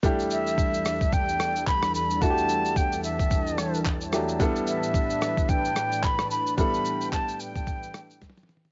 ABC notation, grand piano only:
X:1
M:4/4
L:1/8
Q:"Swing 16ths" 1/4=110
K:Em
V:1 name="Grand piano"
[G,A,DEG]8 | [A,DEFG]6- [A,DEFG] [F,A,DEG] | [G,B,DEA]8 | [G,B,DEA]8 |]